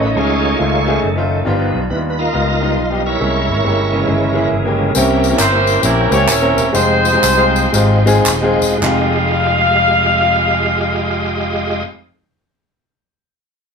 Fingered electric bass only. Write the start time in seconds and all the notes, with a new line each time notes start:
0.00 A1
0.16 C#2
0.60 C#2
1.03 F#1
1.47 G1
1.74 B1
1.90 D#2
2.35 C#2
2.77 B1
3.21 C2
3.48 G#1
3.65 G1
4.09 G1
4.51 G1
4.95 C2
5.39 G1
5.83 A#1
6.11 C#2
6.28 D#1
6.57 E1
6.74 F1
7.23 C2
7.73 G#1
8.26 D#1
8.61 E1
8.82 F1